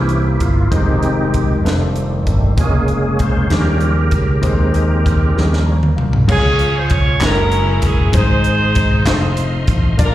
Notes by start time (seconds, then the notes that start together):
Already playing: C2 C3 E3 A#3 C#4 E4 G4 C5
0.09 closed hi-hat
0.40 G1 F4, kick, closed hi-hat
0.70 F1 D#3 G#3 C4 D#4 F4 G4 C5, kick, closed hi-hat
1.03 closed hi-hat
1.34 kick, closed hi-hat
1.63 F1 D#3 G3 A3 D#4 F4 B4, closed hi-hat
1.67 snare
1.72 C5
1.96 closed hi-hat
2.26 G1, kick, closed hi-hat
2.57 F1 C#3 G#3 A#3 C#4 F4 G#4, kick, closed hi-hat
2.65 A#4
2.88 closed hi-hat
3.19 C5, kick, closed hi-hat
3.49 D#2 C#3 D#3 F3 G3 C#4 D#4 G4 A#4, snare, closed hi-hat
3.81 closed hi-hat
4.11 C#2, kick, closed hi-hat
4.42 D#2 D#3 G#3 C4 D#4 C5, kick, closed hi-hat
4.74 closed hi-hat
5.06 kick, closed hi-hat
5.35 D#2 D#3 F3 G3 C#4 D#4 G#4, snare
5.43 A#4
5.53 snare
5.66 A#5
5.83 mid tom
5.96 C2 F5, mid tom
6.13 floor tom
6.28 C#2 C#3 G#3 C#4 F4 G#4 C#5 F5 C#6, kick, crash
6.59 closed hi-hat
6.78 C5
6.90 C#5, kick, closed hi-hat
7.21 F#1 G#3 C#4 E4 F#4 A4 A#4 E5 F#5 A#5, snare, clap, closed hi-hat
7.29 A#4
7.52 closed hi-hat
7.70 A#4
7.82 F#1 G#4, kick, closed hi-hat
8.12 G#1 G#2 G#3 C4 D#4 G#4 C5 D#5 C6, kick, closed hi-hat
8.44 closed hi-hat
8.75 kick, closed hi-hat
9.06 F1 A3 D#4 F4 C5 F5 C6, snare, clap, closed hi-hat
9.37 closed hi-hat
9.67 A1, kick, closed hi-hat
9.97 A#1 A#2 A#3 D4 F4 A#4 D5 D6, kick, closed hi-hat
10.02 D4 F4 A#4